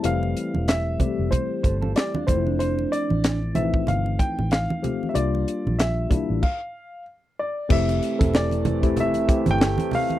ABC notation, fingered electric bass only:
X:1
M:4/4
L:1/16
Q:"Swing 16ths" 1/4=94
K:F
V:1 name="Fingered electric bass" clef=bass
F,,,2 z E,,,3 z F,,, z2 G,,,2 z2 F,,,2- | F,,,2 z A,,,4- A,,, G,,,2 z A,,,2 z3 | C,,2 z B,,,3 z A,,, z8 | F,,,2 z E,,,4- E,,, F,,,2 z G,,,2 z3 |]